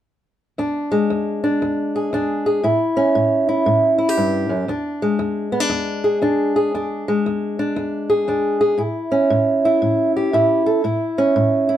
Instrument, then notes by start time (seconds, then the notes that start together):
steel-string acoustic guitar
0.58 E2 D4
0.92 G#3
1.10 E2
1.44 D4
1.62 E2
1.96 G#4
2.13 E2 D4
2.46 G#4
2.63 A2 E4
2.97 C#4
3.15 A2
3.49 E4
3.66 A2
3.98 E4
4.09 G4
4.17 G2
4.49 F#2
4.68 E2 D4
5.02 G#3
5.19 E2
5.52 B3
5.60 D4
5.70 E2
6.04 G#4
6.22 E2 D4
6.56 G#4
6.74 E2 D4
7.08 G#3
7.26 E2
7.59 D4
7.76 E2
8.10 G#4
8.28 E2 D4
8.61 G#4
8.78 A2 E4
9.12 C#4
9.30 A2
9.65 E4
9.82 A2
10.17 G4
10.33 A2 E4
10.66 A4
10.84 A2 E4
11.18 C#4
11.36 A2
11.69 E4